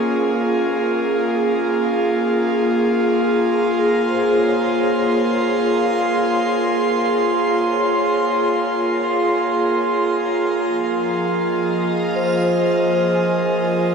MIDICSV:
0, 0, Header, 1, 5, 480
1, 0, Start_track
1, 0, Key_signature, -5, "minor"
1, 0, Tempo, 983607
1, 1380, Time_signature, 4, 2, 24, 8
1, 6806, End_track
2, 0, Start_track
2, 0, Title_t, "Synth texture"
2, 0, Program_c, 0, 99
2, 0, Note_on_c, 0, 82, 69
2, 0, Note_on_c, 0, 94, 76
2, 5215, Note_on_c, 0, 77, 65
2, 5216, Note_on_c, 0, 89, 65
2, 5232, Note_off_c, 0, 82, 0
2, 5236, Note_off_c, 0, 94, 0
2, 6806, Note_off_c, 0, 77, 0
2, 6806, Note_off_c, 0, 89, 0
2, 6806, End_track
3, 0, Start_track
3, 0, Title_t, "Vibraphone"
3, 0, Program_c, 1, 11
3, 0, Control_c, 1, 64, 127
3, 1851, Note_on_c, 1, 68, 53
3, 1994, Note_on_c, 1, 72, 45
3, 2813, Note_on_c, 1, 77, 55
3, 3028, Note_off_c, 1, 68, 0
3, 3160, Note_off_c, 1, 72, 0
3, 3772, Note_on_c, 1, 73, 46
3, 3989, Note_off_c, 1, 77, 0
3, 4949, Note_off_c, 1, 73, 0
3, 5227, Control_c, 1, 64, 0
3, 5315, Control_c, 1, 64, 127
3, 5931, Note_on_c, 1, 72, 61
3, 6414, Note_on_c, 1, 80, 51
3, 6806, Note_off_c, 1, 72, 0
3, 6806, Note_off_c, 1, 80, 0
3, 6806, End_track
4, 0, Start_track
4, 0, Title_t, "Analog synth pad"
4, 0, Program_c, 2, 89
4, 0, Note_on_c, 2, 58, 83
4, 0, Note_on_c, 2, 61, 83
4, 0, Note_on_c, 2, 65, 86
4, 0, Note_on_c, 2, 68, 78
4, 1464, Note_on_c, 2, 84, 84
4, 1608, Note_off_c, 2, 61, 0
4, 5200, Note_on_c, 2, 53, 78
4, 5445, Note_on_c, 2, 75, 63
4, 6694, Note_off_c, 2, 84, 0
4, 6806, Note_off_c, 2, 53, 0
4, 6806, Note_off_c, 2, 58, 0
4, 6806, Note_off_c, 2, 65, 0
4, 6806, Note_off_c, 2, 68, 0
4, 6806, Note_off_c, 2, 75, 0
4, 6806, End_track
5, 0, Start_track
5, 0, Title_t, "Synth drone"
5, 0, Program_c, 3, 95
5, 0, Note_on_c, 3, 58, 65
5, 0, Note_on_c, 3, 65, 64
5, 6806, Note_off_c, 3, 58, 0
5, 6806, Note_off_c, 3, 65, 0
5, 6806, End_track
0, 0, End_of_file